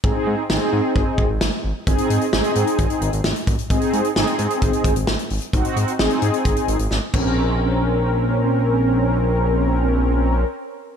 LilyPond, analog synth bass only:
\new Staff \with { instrumentName = "Analog synth bass" } { \clef bass \time 4/4 \key aes \mixolydian \tempo 4 = 131 aes,,16 r16 aes,16 r16 aes,,16 r16 aes,16 r16 aes,,16 r16 aes,,16 aes,,16 aes,,16 r16 aes,,16 r16 | aes,,16 r16 aes,16 r16 aes,,16 r16 aes,16 r16 aes,,16 r16 aes,,16 aes,,16 aes,,16 r16 aes,,16 r16 | aes,,16 r16 aes,16 r16 aes,,16 r16 aes,16 r16 aes,,16 r16 aes,,16 aes,,16 aes,,16 r16 aes,,16 r16 | aes,,16 r16 aes,16 r16 aes,,16 r16 aes,16 r16 aes,,16 r16 aes,,16 aes,,16 aes,,16 r16 bes,,8~ |
bes,,1~ | bes,,1 | }